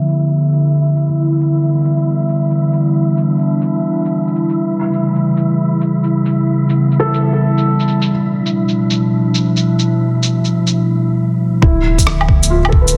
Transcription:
Already playing: ambient pad D3 F3 A3 B3 E4, synth texture E4 E5, felt piano G4
0.08 shaker
0.52 shaker
0.74 shaker
0.82 shaker
0.96 shaker
1.03 ambient pad E3 G3 B3 E4
1.40 shaker
1.62 shaker
1.84 shaker
2.29 shaker
2.51 shaker
2.72 shaker
2.80 ambient pad D4
3.17 shaker
3.39 shaker
3.61 shaker
4.05 shaker
4.27 shaker
4.36 shaker
4.49 shaker
4.56 ambient pad C#3 G3 A3 E4
4.93 shaker
5.15 shaker
5.37 shaker
5.81 shaker
6.04 shaker
6.26 shaker
6.35 ambient pad B3
6.69 shaker
6.91 shaker
7.00 felt piano A4
7.14 shaker
7.58 shaker
7.80 shaker
7.88 shaker
8.02 shaker
8.11 ambient pad B2 F3 A3 D4
8.46 shaker
8.68 shaker
8.90 shaker
9.34 shaker
9.57 shaker
9.79 shaker
10.23 shaker
10.45 shaker
10.67 shaker
11.61 detuned saw bass D1, ambient pad D3 F3 A3 B3 E5, felt piano E4, synth texture E4 E5, kick
11.98 kick, shaker
12.07 cross-stick
12.21 low woodblock
12.29 kick
12.43 shaker
12.50 felt piano F4
12.65 felt piano A4, low woodblock
12.72 kick
12.81 felt piano B4
12.88 shaker

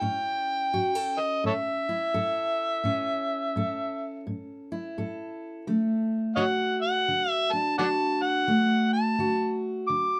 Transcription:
Already playing: steel-string acoustic guitar E4, harmonica G5
0.01 steel-string acoustic guitar A2 C#4
0.74 steel-string acoustic guitar A2 F#4
0.95 steel-string acoustic guitar A4
1.19 harmonica D#5
1.44 steel-string acoustic guitar A2, harmonica A4 C#5 E5
1.89 steel-string acoustic guitar E4
2.14 steel-string acoustic guitar A2 A4
2.84 steel-string acoustic guitar A2 C#4
3.56 steel-string acoustic guitar A2 A4
4.27 steel-string acoustic guitar A2
4.72 steel-string acoustic guitar E4
4.98 steel-string acoustic guitar A2 A4
5.67 steel-string acoustic guitar D3 A3
6.36 steel-string acoustic guitar D3 F#4, harmonica C#5 D#5 F#5
6.82 harmonica F#5
7.08 steel-string acoustic guitar D3
7.31 harmonica E5
7.52 steel-string acoustic guitar D4, harmonica A5
7.78 steel-string acoustic guitar D3 F#4, harmonica D5 F#5 A5
8.22 harmonica F#5
8.47 steel-string acoustic guitar D3 A3
8.93 harmonica A5
9.19 steel-string acoustic guitar D3 F#4
9.88 steel-string acoustic guitar D3, harmonica D6

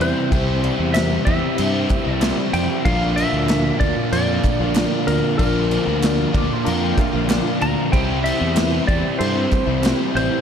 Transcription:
Already playing: overdriven electric guitar C3 E3 G3 C4 E4 G4, tonewheel organ C4 E4 G4 E5
0.00 fingered electric bass E2, overdriven electric guitar C3 G3 C4 E4, reed electric piano E4 G4 C5 D5, electric slide guitar C5, crash
0.14 overdriven electric guitar G3 C4 E4
0.30 fingered electric bass C2, overdriven electric guitar C3 E3 G3 C4 E4, tonewheel organ C4 E4 G4 E5, reed electric piano E4 G4 C5 G5, kick, crash
0.34 overdriven electric guitar G4
0.62 reed electric piano E4 G4 C5 D5, crash
0.77 fingered electric bass E2, overdriven electric guitar G3 C4 E4
0.93 overdriven electric guitar C3 G3 C4, reed electric piano E4 G4 C5 E5, electric slide guitar E5, snare, clap, crash
1.25 fingered electric bass E2, overdriven electric guitar C3 E3 G3 C4 E4 G4, reed electric piano E4 G4 C5 E5, electric slide guitar E5, kick, crash
1.41 muted overdriven electric guitar stroke
1.56 fingered electric bass G2, reed electric piano E4 G4 C5 E5, crash
1.73 overdriven electric guitar G3 C4 E4
1.89 reed electric piano E4 G4 C5 G5, muted overdriven electric guitar stroke, kick, clap, crash
2.04 fingered electric bass C2, overdriven electric guitar G3 C4 E4
2.14 electric slide guitar D5
2.20 overdriven electric guitar C3 G3 C4 E4, reed electric piano E4 G4 C5 E5, snare, clap, crash
2.52 fingered electric bass F2, overdriven electric guitar C3 G3 C4 E4, reed electric piano E4 G4 C5 D5, electric slide guitar G5, crash
2.68 overdriven electric guitar G3 C4 E4
2.84 fingered electric bass A#1, overdriven electric guitar A#2 D3 F3 A#3 D4 F4, tonewheel organ A#3 D4 F4 D5, reed electric piano D4 F4 A#4 D5, electric slide guitar F5, kick, crash
3.16 reed electric piano D4 F4 A#4 F5, electric slide guitar E5, crash
3.32 fingered electric bass D2, overdriven electric guitar F3 A#3 F4
3.47 overdriven electric guitar A#2 D3 F3 A#3 F4, reed electric piano D4 F4 A#4 F5, snare, clap, crash
3.79 fingered electric bass D2, overdriven electric guitar A#2 D3 F3 A#3 D4 F4, reed electric piano D4 F4 A#4 D5, electric slide guitar D5, kick, crash
3.96 muted overdriven electric guitar stroke
4.11 fingered electric bass F2, reed electric piano D4 F4 A#4 D5, electric slide guitar D5, crash
4.27 overdriven electric guitar F3 A#3 F4
4.43 reed electric piano D4 F4 A#4 D5, muted overdriven electric guitar stroke, kick, clap, crash
4.59 fingered electric bass A#1, overdriven electric guitar F3 A#3 F4
4.75 overdriven electric guitar A#2 D3 F3 A#3 F4, reed electric piano D4 F4 A#4 D5, snare, clap, crash
5.07 fingered electric bass D2, overdriven electric guitar D3 F3 A#3 F4, reed electric piano D4 F4 A#4 D5, electric slide guitar A#4, crash
5.23 overdriven electric guitar F3 A#3 F4
5.38 fingered electric bass A#1, overdriven electric guitar A#2 D3 F3 A#3 D4 F4, tonewheel organ A#3 D4 F4 D5, reed electric piano D4 F4 A#4 D5, electric slide guitar A#4, kick, crash
5.71 reed electric piano D4 F4 A#4 C5, crash
5.86 fingered electric bass D2, overdriven electric guitar F3 A#3 F4
6.01 overdriven electric guitar A#2 D3 F3 A#3 F4, reed electric piano D4 F4 A#4 D5, snare, clap, crash
6.33 fingered electric bass D2, overdriven electric guitar A#2 D3 F3 A#3 D4 F4, reed electric piano D4 F4 A#4 D5, lead electric guitar D5, kick, crash
6.50 lead electric guitar C5, muted overdriven electric guitar stroke
6.65 fingered electric bass F2, reed electric piano D4 F4 A#4 F5, lead electric guitar A#4, crash
6.81 overdriven electric guitar F3 A#3 F4, lead electric guitar G4
6.96 reed electric piano D4 F4 A#4 E5, lead electric guitar F4, muted overdriven electric guitar stroke, kick, clap, crash
7.13 fingered electric bass A#1, overdriven electric guitar F3 A#3 F4
7.29 overdriven electric guitar A#2 D3 F3 A#3 F4, reed electric piano D4 F4 A#4 F5, lead electric guitar D4, snare, clap, crash
7.60 fingered electric bass D2, overdriven electric guitar D3 F3 A#3 F4, reed electric piano D4 F4 A#4 F5, electric slide guitar A#5, crash
7.76 overdriven electric guitar F3 A#3 F4
7.92 fingered electric bass C2, overdriven electric guitar C3 E3 G3 C4 E4, tonewheel organ G#3 C#4 F4 C#5, reed electric piano C4 E4 G4 C5, electric slide guitar G5, kick, crash
8.13 tonewheel organ G3 C4 E4 C5
8.23 reed electric piano C4 E4 G4 C5, electric slide guitar E5, crash
8.39 fingered electric bass E2, overdriven electric guitar G3 C4 E4
8.55 overdriven electric guitar C3 G3 C4 E4, reed electric piano C4 E4 G4 B4, snare, clap, crash
8.87 fingered electric bass E2, overdriven electric guitar C3 E3 G3 C4 E4, reed electric piano C4 E4 G4 C5, electric slide guitar D5, kick, crash
9.04 muted overdriven electric guitar stroke
9.18 fingered electric bass G2, reed electric piano C4 E4 G4 A4, electric slide guitar C5, crash
9.34 overdriven electric guitar G3 C4 E4
9.51 reed electric piano C4 E4 G4 C5, muted overdriven electric guitar stroke, kick, clap, crash
9.67 fingered electric bass C2, overdriven electric guitar G3 C4 E4
9.82 overdriven electric guitar C3 G3 C4 E4, reed electric piano C4 E4 G4 C5, clap, crash
9.86 snare
10.14 fingered electric bass A1, overdriven electric guitar C3 G3 C4 E4, reed electric piano C4 E4 G4 D5, electric slide guitar C5, crash
10.30 overdriven electric guitar G3 C4 E4

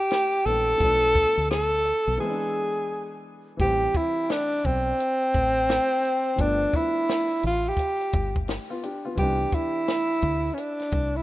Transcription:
Already playing: grand piano E3 G3 B3 D4, tenor saxophone G4
0.11 snare, closed hi-hat
0.45 fingered electric bass A#1, grand piano E3 G3 B3 D4, tenor saxophone A4, closed hi-hat
0.78 fingered electric bass B1, grand piano F3 A3, kick, closed hi-hat
0.82 grand piano B3 D4
1.15 kick, closed hi-hat
1.38 fingered electric bass D2
1.50 tenor saxophone A4, snare, closed hi-hat
1.85 closed hi-hat
2.07 fingered electric bass B1
2.17 grand piano E3 G#3, tenor saxophone G#4
2.22 grand piano B3 C4
2.31 grand piano D4
3.57 fingered electric bass A1, grand piano E3 G3, tenor saxophone G4, kick, closed hi-hat
3.62 grand piano C4 B4
3.94 tenor saxophone E4, kick, closed hi-hat
4.30 tenor saxophone D4, snare, closed hi-hat
4.64 fingered electric bass B1, tenor saxophone C4, kick, closed hi-hat
5.00 closed hi-hat
5.22 closed hi-hat
5.34 fingered electric bass A1, kick, closed hi-hat
5.69 snare, closed hi-hat
6.05 closed hi-hat
6.36 fingered electric bass G1, grand piano F3 A3, kick, closed hi-hat
6.41 grand piano B3 D4, tenor saxophone D4
6.73 tenor saxophone E4, kick, closed hi-hat
7.09 snare, closed hi-hat
7.43 fingered electric bass A1, tenor saxophone F4, closed hi-hat
7.68 tenor saxophone G4
7.77 kick, closed hi-hat
8.01 closed hi-hat
8.13 fingered electric bass G1, kick, closed hi-hat
8.36 kick
8.48 snare, closed hi-hat
8.70 grand piano B3 F4
8.83 grand piano D4 G4, closed hi-hat
9.05 grand piano B3 F4
9.15 fingered electric bass C2, grand piano E3 G3, tenor saxophone G4, kick, closed hi-hat
9.20 grand piano B3 D4
9.52 tenor saxophone E4, kick, closed hi-hat
9.88 snare, closed hi-hat
10.22 fingered electric bass D2, kick, closed hi-hat
10.54 tenor saxophone C#4, closed hi-hat
10.59 tenor saxophone D4
10.80 snare, closed hi-hat
10.92 fingered electric bass C2, kick, closed hi-hat
11.16 tenor saxophone E4

